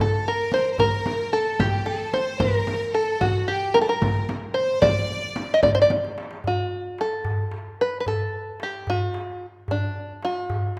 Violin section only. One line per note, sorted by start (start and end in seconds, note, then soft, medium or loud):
0.00 0.23 A4 medium
0.26 0.72 A#4 medium
0.72 0.79 C5 medium
0.79 1.33 A#4 medium
1.33 1.60 A4 medium
1.60 1.87 G4 medium
1.87 2.14 A4 medium
2.15 2.41 C5 medium
2.41 2.95 A#4 medium
2.95 3.20 A4 medium
3.23 3.49 F#4 medium
3.49 3.80 G4 medium
3.84 3.90 C5 medium
3.90 4.29 A#4 medium
4.56 4.81 C5 medium
4.83 5.54 D5 medium